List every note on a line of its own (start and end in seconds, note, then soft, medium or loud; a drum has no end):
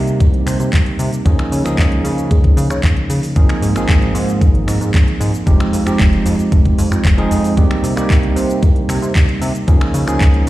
0.00 0.22 C3 loud
0.00 1.22 G3 medium
0.00 1.22 A#3 medium
0.00 1.23 C4 medium
0.00 1.23 D#4 medium
0.00 1.23 G4 medium
0.07 closed hi-hat soft
0.07 shaker soft
0.20 0.43 C2 loud
0.20 kick loud
0.20 closed hi-hat medium
0.20 shaker soft
0.34 closed hi-hat soft
0.46 0.58 C3 loud
0.46 finger snap medium
0.46 open hi-hat loud
0.46 shaker medium
0.60 0.71 C3 medium
0.60 closed hi-hat soft
0.60 shaker soft
0.73 0.84 C2 medium
0.73 kick loud
0.73 clap loud
0.73 closed hi-hat medium
0.73 shaker soft
0.86 closed hi-hat soft
0.99 1.10 C3 loud
0.99 open hi-hat loud
0.99 shaker medium
1.13 closed hi-hat soft
1.13 shaker soft
1.25 1.37 C#2 loud
1.25 1.62 F3 medium
1.25 1.62 A#3 medium
1.25 1.62 C#4 medium
1.25 1.62 D#4 medium
1.25 1.62 G#4 medium
1.25 kick loud
1.25 closed hi-hat medium
1.25 shaker soft
1.39 finger snap medium
1.39 closed hi-hat soft
1.52 1.63 C#3 medium
1.52 open hi-hat loud
1.52 shaker medium
1.64 1.76 C#2 soft
1.64 3.33 F3 medium
1.64 3.33 A#3 medium
1.64 3.33 C#4 medium
1.64 3.33 D#4 medium
1.64 3.34 G#4 medium
1.64 finger snap medium
1.64 closed hi-hat soft
1.64 shaker soft
1.78 2.01 C#2 medium
1.78 kick loud
1.78 clap loud
1.78 closed hi-hat medium
1.78 shaker soft
1.92 closed hi-hat soft
2.04 2.32 C#3 loud
2.04 open hi-hat loud
2.04 shaker medium
2.18 closed hi-hat soft
2.18 shaker soft
2.31 2.53 C#2 loud
2.31 kick loud
2.31 closed hi-hat medium
2.31 shaker soft
2.44 kick medium
2.44 closed hi-hat soft
2.57 2.68 C#3 loud
2.57 open hi-hat loud
2.57 shaker medium
2.70 2.82 C#3 medium
2.70 finger snap medium
2.70 closed hi-hat soft
2.70 shaker soft
2.83 2.95 C#2 medium
2.83 kick loud
2.83 clap loud
2.83 closed hi-hat medium
2.83 shaker soft
2.97 closed hi-hat soft
3.10 3.21 C#3 medium
3.10 open hi-hat loud
3.10 shaker medium
3.23 open hi-hat medium
3.23 shaker soft
3.36 3.47 G#1 loud
3.36 3.73 F3 medium
3.36 3.73 A#3 medium
3.36 3.73 C4 medium
3.36 3.73 D#4 medium
3.36 3.73 G#4 medium
3.36 kick loud
3.36 closed hi-hat medium
3.36 shaker soft
3.49 finger snap medium
3.49 closed hi-hat soft
3.62 3.74 G#2 medium
3.62 open hi-hat loud
3.62 shaker medium
3.75 3.86 G#1 soft
3.75 5.43 F3 medium
3.75 5.44 A#3 medium
3.75 5.44 C4 medium
3.75 5.44 D#4 medium
3.75 5.44 G#4 medium
3.75 finger snap medium
3.75 closed hi-hat soft
3.75 shaker soft
3.89 4.11 G#1 medium
3.89 kick loud
3.89 clap loud
3.89 closed hi-hat medium
3.89 shaker soft
4.02 closed hi-hat soft
4.15 4.43 G#2 loud
4.15 open hi-hat loud
4.15 shaker medium
4.29 closed hi-hat soft
4.29 shaker soft
4.41 4.64 G#1 loud
4.41 kick loud
4.41 closed hi-hat medium
4.41 shaker soft
4.55 closed hi-hat soft
4.67 4.79 G#2 medium
4.67 finger snap medium
4.67 open hi-hat loud
4.67 shaker medium
4.81 4.92 G#2 medium
4.81 closed hi-hat soft
4.81 shaker soft
4.94 5.05 G#1 medium
4.94 kick loud
4.94 clap loud
4.94 closed hi-hat medium
4.94 shaker soft
5.08 closed hi-hat soft
5.20 5.32 G#2 loud
5.20 open hi-hat loud
5.20 shaker medium
5.34 closed hi-hat soft
5.34 shaker soft
5.46 5.58 F1 loud
5.46 5.83 F3 medium
5.46 5.83 G#3 medium
5.46 5.83 C4 medium
5.46 5.83 D#4 medium
5.46 5.83 G4 medium
5.46 kick loud
5.46 closed hi-hat medium
5.46 shaker soft
5.60 finger snap medium
5.60 closed hi-hat soft
5.73 5.84 F2 medium
5.73 open hi-hat loud
5.73 shaker medium
5.85 5.97 F1 soft
5.85 7.15 F3 medium
5.85 7.15 G#3 medium
5.85 7.15 C4 medium
5.85 7.16 D#4 medium
5.85 7.16 G4 medium
5.85 finger snap medium
5.85 closed hi-hat soft
5.85 shaker soft
5.99 6.22 F1 medium
5.99 kick loud
5.99 clap loud
5.99 closed hi-hat medium
5.99 shaker soft
6.13 closed hi-hat soft
6.26 6.37 F2 loud
6.26 open hi-hat loud
6.26 shaker medium
6.39 closed hi-hat soft
6.39 shaker soft
6.52 6.74 F1 medium
6.52 kick loud
6.52 closed hi-hat medium
6.52 shaker soft
6.65 kick medium
6.65 closed hi-hat soft
6.78 6.90 F2 loud
6.78 open hi-hat loud
6.78 shaker medium
6.92 7.03 F2 medium
6.92 finger snap medium
6.92 shaker soft
7.05 7.27 F1 medium
7.05 kick loud
7.05 clap loud
7.05 closed hi-hat medium
7.05 shaker soft
7.17 7.54 F3 medium
7.17 7.54 G#3 medium
7.17 7.54 C4 medium
7.17 7.54 D#4 medium
7.17 7.54 G#4 loud
7.17 closed hi-hat soft
7.31 7.53 F2 medium
7.31 open hi-hat loud
7.31 shaker medium
7.44 open hi-hat medium
7.44 shaker soft
7.57 7.69 C2 loud
7.57 7.94 G3 medium
7.57 7.94 A#3 medium
7.57 7.94 C4 medium
7.57 7.94 D#4 medium
7.57 7.94 G4 medium
7.57 kick loud
7.57 closed hi-hat medium
7.57 shaker soft
7.71 finger snap medium
7.71 closed hi-hat soft
7.84 7.95 C3 medium
7.84 open hi-hat loud
7.84 shaker medium
7.96 8.07 C2 soft
7.96 9.64 G3 medium
7.96 9.64 A#3 medium
7.96 9.65 C4 medium
7.96 9.65 D#4 medium
7.96 9.65 G4 medium
7.96 finger snap medium
7.96 closed hi-hat soft
7.96 shaker soft
8.10 8.32 C2 loud
8.10 kick loud
8.10 clap loud
8.10 closed hi-hat medium
8.10 shaker soft
8.23 closed hi-hat soft
8.36 8.64 C3 loud
8.36 open hi-hat loud
8.36 shaker medium
8.50 closed hi-hat soft
8.50 shaker soft
8.63 8.85 C2 loud
8.63 kick loud
8.63 closed hi-hat medium
8.63 shaker soft
8.76 closed hi-hat soft
8.89 9.00 C3 medium
8.89 finger snap medium
8.89 open hi-hat loud
8.89 shaker medium
9.02 9.13 C3 medium
9.02 closed hi-hat soft
9.02 shaker soft
9.15 9.27 C2 medium
9.15 kick loud
9.15 clap loud
9.15 closed hi-hat medium
9.15 shaker soft
9.29 closed hi-hat soft
9.41 9.53 C3 loud
9.41 open hi-hat loud
9.41 shaker medium
9.55 closed hi-hat soft
9.55 shaker soft
9.67 9.79 C#2 loud
9.67 10.04 F3 medium
9.67 10.04 A#3 medium
9.67 10.04 C#4 medium
9.67 10.04 D#4 medium
9.67 10.04 G#4 medium
9.67 kick loud
9.67 closed hi-hat medium
9.67 shaker soft
9.81 finger snap medium
9.81 closed hi-hat soft
9.94 10.05 C#3 medium
9.94 open hi-hat loud
9.94 shaker medium
10.06 10.18 C#2 soft
10.06 10.49 F3 medium
10.06 10.49 A#3 medium
10.06 10.49 C#4 medium
10.06 10.49 D#4 medium
10.06 10.49 G#4 medium
10.06 finger snap medium
10.06 closed hi-hat soft
10.06 shaker soft
10.21 10.43 C#2 medium
10.21 kick loud
10.21 clap loud
10.21 closed hi-hat medium
10.21 shaker soft
10.34 closed hi-hat soft